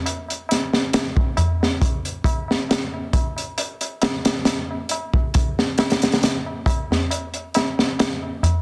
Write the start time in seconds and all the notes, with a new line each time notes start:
0.06 closed hi-hat, tabla na
0.28 closed hi-hat, tabla na
0.49 snare, closed hi-hat, tabla na
0.73 snare, tabla na
0.93 snare, closed hi-hat, tabla na
1.17 kick, tabla na
1.37 closed hi-hat, tabla na, tabla ge
1.61 snare, tabla na
1.82 kick, closed hi-hat, tabla na
2.05 closed hi-hat
2.24 kick, closed hi-hat, tabla na
2.48 snare, tabla na
2.69 snare, closed hi-hat, tabla na
2.94 tabla na
3.13 kick, closed hi-hat, tabla na
3.36 closed hi-hat, tabla na
3.58 closed hi-hat, tabla na
3.81 closed hi-hat, tabla na
4.02 snare, closed hi-hat, tabla na
4.25 snare, closed hi-hat, tabla na
4.45 snare, closed hi-hat, tabla na
4.71 tabla na
4.89 closed hi-hat, tabla na
5.14 kick, tabla na
5.34 kick, closed hi-hat, tabla na
5.59 snare
5.78 snare, closed hi-hat, tabla na
5.90 snare, closed hi-hat
6.02 snare, closed hi-hat, tabla na
6.12 snare, closed hi-hat
6.23 snare, closed hi-hat, tabla na
6.46 tabla na
6.66 kick, closed hi-hat, tabla na
6.91 snare, tabla na, tabla ge
7.10 closed hi-hat, tabla na
7.34 closed hi-hat, tabla na
7.54 snare, closed hi-hat, tabla na
7.78 snare, tabla na
7.99 snare, closed hi-hat, tabla na
8.22 tabla na
8.43 closed hi-hat, tabla na, tabla ge